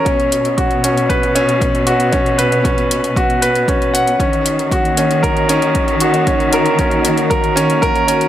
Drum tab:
HH |xxxxxxxxxxxxxxxx|xxxxxxxxxxxxxxxx|xxxxxxxxxxxxxxxx|xxxxxxxxxxxxxxxx|
BD |o---o---o---o---|o---o---o---o---|o---o---o---o---|o---o---o---o---|